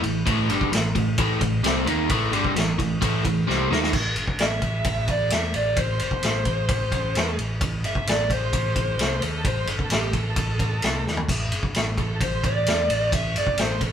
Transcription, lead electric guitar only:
4.40 E5
5.10 D5
5.32 E5
5.56 D5
5.78 C5
6.02 C5
7.86 E5
8.08 D5
8.32 C5
9.23 A4
9.47 C5
9.69 A4
9.92 G4
10.14 A4
11.98 A4
12.22 C5
12.45 D5
13.14 E5
13.38 D5
13.60 C5
13.83 A4

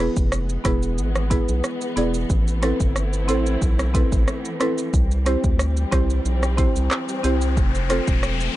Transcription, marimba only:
0.00 B3 E4 G#4 B4
0.64 B3 E4 G#4 B4
1.30 B3 E4 G#4 B4
1.96 B3 E4 G#4 D5
2.62 C4 E4 A4 B4
3.28 C4 E4 A4 C5
3.94 C4 E4 A4 B4
4.60 C4 E4 A4 B4
5.26 C4 E4 G4 C5
5.92 C4 E4 G4 C5
6.57 C4 E4 G4 C5
7.23 C4 E4 G4 C5
7.89 C4 F4 A4 C5

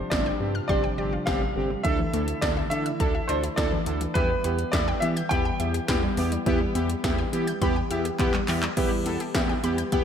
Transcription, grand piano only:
Already playing: C5
0.10 D5
0.68 D5
1.26 F5
1.83 E5
2.41 D5
2.70 E5
3.28 C5
3.56 D5
4.14 B4
4.72 D5
5.00 E5
5.29 G5

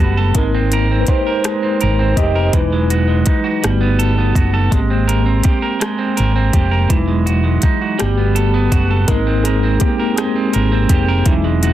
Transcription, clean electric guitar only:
Already playing: G3 B3 A4
0.00 F#4
0.17 A4
0.36 G#3
0.55 C4
0.73 A#4
0.91 C4
1.09 G4
1.27 A#4
1.44 G#3
1.63 C4
1.81 A#4
1.99 C4
2.17 G4
2.35 A#4
2.54 E3
2.73 G#3
2.90 F#4
3.08 G#3
3.26 D#4
3.44 F#4
3.63 G3
3.81 B3
3.99 A4
4.18 B3
4.36 F#4
4.54 A4
4.71 G#3
4.90 C4
5.08 A#4
5.26 C4
5.44 G4
5.62 A#4
5.80 G#3
5.98 C4
6.17 A#4
6.36 C4
6.53 G4
6.71 A#4
6.89 E3
7.08 G#3
7.26 F#4
7.44 G#3
7.63 D#4
7.81 F#4
7.99 G3
8.18 B3
8.35 A4
8.54 B3
8.72 F#4
8.91 A4
9.09 G#3
9.27 C4
9.45 A#4
9.63 C4
9.81 G4
9.99 A#4
10.18 G#3
10.36 C4
10.54 A#4
10.72 C4
10.90 G4
11.08 A#4
11.26 E3
11.44 G#3
11.63 F#4

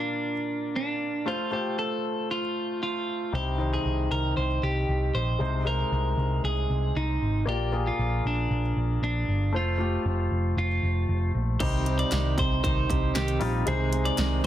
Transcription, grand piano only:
Already playing: A#2 A#3 F4 D5
1.26 A3 F4 C5
1.51 A3 F4 C5
3.32 C3 G3 D#4 C5
3.58 D#3 D#4 C5
5.39 C3 G#3 D#4 C5
5.65 G#3 D#4 C5
7.45 A#2 A#3 F4 D5
7.72 A#3 F4 G#4
9.52 A3 F4 C5
9.78 A3 F4 G4
11.60 C3 G3 D#4 C5
13.39 G3 D#4 F4
13.66 C3 G#3 D#4 C5

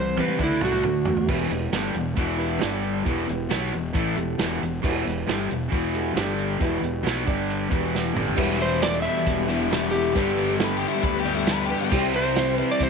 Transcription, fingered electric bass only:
Already playing: C2
0.40 D2
0.61 C2
0.84 D2
1.07 E2
1.29 E1
1.50 E1
1.72 G1
1.94 E1
2.17 E1
2.62 G1
3.07 E1
3.29 E1
3.52 B1
3.74 E1
3.95 A1
4.16 E1
4.40 E1
4.63 E1
4.84 E1
5.07 E1
5.29 G1
5.52 E1
5.73 E1
6.16 G1
6.61 E1
6.82 E1
7.04 B1
7.28 G1
7.72 E1
8.16 G1
8.38 E1
9.26 E1
10.16 G1
11.03 D2
11.93 C2
12.81 C2

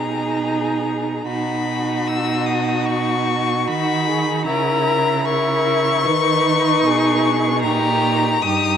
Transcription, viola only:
Already playing: D#4
1.27 D#4
3.67 D#4
4.46 E4
5.26 E4
6.06 D#4
7.63 D#4
8.43 D#4

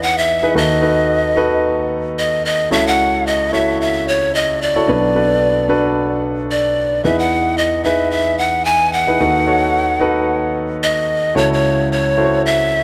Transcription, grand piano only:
Already playing: E2 E3 D#4 E4 G#4 B4
0.42 D#4 E4 G#4 B4
0.54 D#2 D#3 D#4 F#4 A4 B4
0.81 D#4 F#4 A4 B4
1.36 D#4 F#4 A4 B4
2.71 C#2 C#3 E4 F#4 A4 C#5
3.52 E4 F#4 A4 C#5
4.75 E4 F#4 A4 C#5
4.88 B1 B2 D4 F#4 A4 B4
5.14 D4 F#4 A4 B4
5.68 D4 F#4 A4 B4
7.04 E2 E3 D#4 E4 G#4 B4
7.85 D#4 E4 G#4 B4
9.07 D#4 E4 G#4 B4
9.20 D#2 D#3 D#4 F#4 A4 B4
9.46 D#4 F#4 A4 C#5
10.00 D#4 F#4 A4 B4
11.35 C#2 C#3 E4 F#4 A4 C#5
12.17 E4 F#4 A4 C5
12.24 C#5

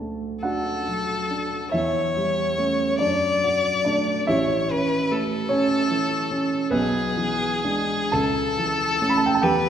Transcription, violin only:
0.44 A4
1.74 C#5
3.00 D5
4.29 C#5
4.71 B4
5.12 A4
6.73 G#4
8.13 A4
9.43 B4

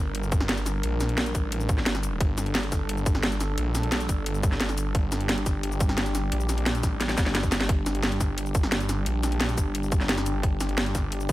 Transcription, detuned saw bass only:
Already playing: G1
0.83 A#1
1.35 A1
1.86 G1
2.20 G1
2.72 G1
3.58 A#1
4.09 G1
4.95 G1
5.46 G1
6.32 A#1
6.83 A1
7.18 G1
7.52 G1
7.69 G1
8.21 G1
9.06 A#1
9.58 G1
10.43 G1
10.95 G1

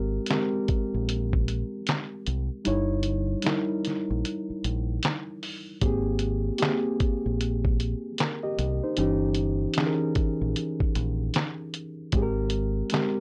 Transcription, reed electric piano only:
Already playing: G#3 C4 G4 A#4
0.30 G#3 C4 G4 A#4
2.65 G3 D#4 E4 C#5
3.44 G3 D#4 E4 A#4
5.82 A#3 C4 G4 G#4
6.59 A#3 C4 G4 G#4
8.20 A#4
8.43 G4 D#5
8.84 D#4 C5
8.97 E3 C#4 D#4 G4
9.77 E3 C#4 D#4 G#4
9.87 A#4
12.13 G#3 C4 G4 G#4
12.22 A#4
12.92 G#3 C4 G4 A#4

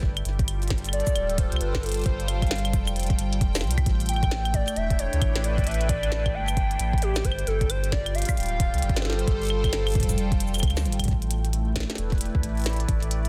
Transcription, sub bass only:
0.03 G1
0.25 G1
1.16 D1
1.52 C2
1.61 G1
2.06 G1
2.73 F1
3.19 G1
3.41 F1
3.64 C2
3.86 A1
4.76 E1
5.13 D2
5.22 A1
5.67 A1
6.34 G1
6.79 A1
7.25 G1
7.47 G1
8.37 D1
8.74 C2
8.82 G1
9.28 G1
9.95 F1
10.63 D2
10.85 G1
11.08 A1
11.98 E1
12.35 D2
12.43 A1
12.88 A1

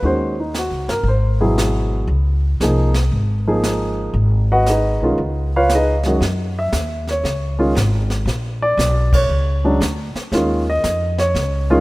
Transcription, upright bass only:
0.03 D#2
0.71 C#2
0.88 G1
1.03 G#1
2.07 C#2
2.60 C2
3.11 G#1
4.14 G#1
5.00 B1
5.18 C#2
6.21 F#2
6.73 D#2
7.24 C#2
7.75 G#1
8.26 A#1
8.77 B1
9.29 C#2
9.81 D2
10.15 muted upright bass stroke
10.32 D#2
10.84 F2
11.35 C#2

